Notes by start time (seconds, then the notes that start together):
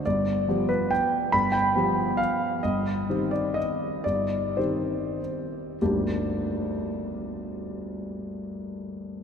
0.06 G1 D5
0.48 F3 B3 G4
0.69 B4
0.91 G5
1.32 G1 B5
1.52 G5
1.75 F3 B3 G4
2.17 F5
2.63 G1 D#5
3.09 D#3 C4 G4
3.31 D5
3.54 D#5
4.04 G1 D5
4.57 D#3 C4 G4 C5
5.81 G1 D2 G3 A#3 D4 G4